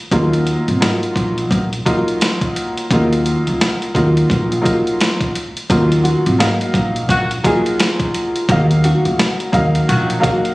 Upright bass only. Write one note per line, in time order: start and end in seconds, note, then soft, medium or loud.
0.12 0.54 D#2 loud
0.68 0.78 G#1 medium
1.16 1.42 A#1 medium
1.51 1.77 A#1 loud
2.91 3.33 D#2 loud
3.47 3.57 C#2 medium
3.95 4.22 D#2 medium
4.30 4.56 A#1 loud
5.70 6.12 D#2 loud
6.26 6.37 G#1 loud
6.74 7.01 A#1 loud
7.09 7.36 A#1 loud
8.49 8.91 D#2 loud
9.05 9.15 C#2 medium
9.53 9.80 D#2 loud
9.89 10.15 A#1 loud